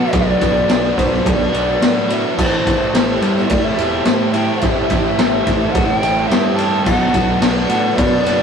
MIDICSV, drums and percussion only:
0, 0, Header, 1, 2, 480
1, 0, Start_track
1, 0, Tempo, 560748
1, 114, Time_signature, 4, 2, 24, 8
1, 7213, End_track
2, 0, Start_track
2, 0, Title_t, "Drums"
2, 108, Note_on_c, 9, 51, 96
2, 113, Note_on_c, 9, 36, 119
2, 194, Note_off_c, 9, 51, 0
2, 199, Note_off_c, 9, 36, 0
2, 355, Note_on_c, 9, 36, 90
2, 355, Note_on_c, 9, 51, 73
2, 441, Note_off_c, 9, 36, 0
2, 441, Note_off_c, 9, 51, 0
2, 594, Note_on_c, 9, 51, 97
2, 595, Note_on_c, 9, 38, 120
2, 679, Note_off_c, 9, 51, 0
2, 681, Note_off_c, 9, 38, 0
2, 839, Note_on_c, 9, 36, 76
2, 845, Note_on_c, 9, 51, 78
2, 924, Note_off_c, 9, 36, 0
2, 931, Note_off_c, 9, 51, 0
2, 971, Note_on_c, 9, 38, 33
2, 1057, Note_off_c, 9, 38, 0
2, 1080, Note_on_c, 9, 36, 127
2, 1083, Note_on_c, 9, 51, 103
2, 1166, Note_off_c, 9, 36, 0
2, 1169, Note_off_c, 9, 51, 0
2, 1322, Note_on_c, 9, 51, 71
2, 1408, Note_off_c, 9, 51, 0
2, 1560, Note_on_c, 9, 51, 105
2, 1562, Note_on_c, 9, 38, 118
2, 1645, Note_off_c, 9, 51, 0
2, 1647, Note_off_c, 9, 38, 0
2, 1800, Note_on_c, 9, 51, 81
2, 1886, Note_off_c, 9, 51, 0
2, 2043, Note_on_c, 9, 36, 113
2, 2046, Note_on_c, 9, 49, 99
2, 2129, Note_off_c, 9, 36, 0
2, 2131, Note_off_c, 9, 49, 0
2, 2284, Note_on_c, 9, 36, 89
2, 2284, Note_on_c, 9, 51, 76
2, 2369, Note_off_c, 9, 36, 0
2, 2370, Note_off_c, 9, 51, 0
2, 2522, Note_on_c, 9, 51, 104
2, 2524, Note_on_c, 9, 38, 118
2, 2608, Note_off_c, 9, 51, 0
2, 2610, Note_off_c, 9, 38, 0
2, 2759, Note_on_c, 9, 51, 74
2, 2844, Note_off_c, 9, 51, 0
2, 2886, Note_on_c, 9, 38, 34
2, 2972, Note_off_c, 9, 38, 0
2, 2992, Note_on_c, 9, 51, 103
2, 3002, Note_on_c, 9, 36, 120
2, 3078, Note_off_c, 9, 51, 0
2, 3088, Note_off_c, 9, 36, 0
2, 3240, Note_on_c, 9, 51, 69
2, 3325, Note_off_c, 9, 51, 0
2, 3470, Note_on_c, 9, 51, 91
2, 3471, Note_on_c, 9, 38, 111
2, 3555, Note_off_c, 9, 51, 0
2, 3557, Note_off_c, 9, 38, 0
2, 3712, Note_on_c, 9, 51, 68
2, 3797, Note_off_c, 9, 51, 0
2, 3950, Note_on_c, 9, 51, 91
2, 3961, Note_on_c, 9, 36, 109
2, 4035, Note_off_c, 9, 51, 0
2, 4046, Note_off_c, 9, 36, 0
2, 4192, Note_on_c, 9, 51, 68
2, 4201, Note_on_c, 9, 36, 90
2, 4278, Note_off_c, 9, 51, 0
2, 4287, Note_off_c, 9, 36, 0
2, 4439, Note_on_c, 9, 51, 99
2, 4441, Note_on_c, 9, 38, 123
2, 4525, Note_off_c, 9, 51, 0
2, 4526, Note_off_c, 9, 38, 0
2, 4680, Note_on_c, 9, 51, 74
2, 4682, Note_on_c, 9, 36, 82
2, 4765, Note_off_c, 9, 51, 0
2, 4767, Note_off_c, 9, 36, 0
2, 4922, Note_on_c, 9, 36, 121
2, 4922, Note_on_c, 9, 51, 100
2, 5007, Note_off_c, 9, 51, 0
2, 5008, Note_off_c, 9, 36, 0
2, 5160, Note_on_c, 9, 51, 74
2, 5246, Note_off_c, 9, 51, 0
2, 5404, Note_on_c, 9, 51, 102
2, 5406, Note_on_c, 9, 38, 106
2, 5490, Note_off_c, 9, 51, 0
2, 5492, Note_off_c, 9, 38, 0
2, 5637, Note_on_c, 9, 51, 76
2, 5722, Note_off_c, 9, 51, 0
2, 5873, Note_on_c, 9, 49, 96
2, 5876, Note_on_c, 9, 36, 112
2, 5959, Note_off_c, 9, 49, 0
2, 5961, Note_off_c, 9, 36, 0
2, 6111, Note_on_c, 9, 51, 80
2, 6114, Note_on_c, 9, 36, 92
2, 6197, Note_off_c, 9, 51, 0
2, 6200, Note_off_c, 9, 36, 0
2, 6350, Note_on_c, 9, 51, 114
2, 6352, Note_on_c, 9, 38, 116
2, 6435, Note_off_c, 9, 51, 0
2, 6437, Note_off_c, 9, 38, 0
2, 6587, Note_on_c, 9, 51, 83
2, 6673, Note_off_c, 9, 51, 0
2, 6831, Note_on_c, 9, 51, 116
2, 6832, Note_on_c, 9, 36, 125
2, 6916, Note_off_c, 9, 51, 0
2, 6918, Note_off_c, 9, 36, 0
2, 7074, Note_on_c, 9, 51, 79
2, 7159, Note_off_c, 9, 51, 0
2, 7213, End_track
0, 0, End_of_file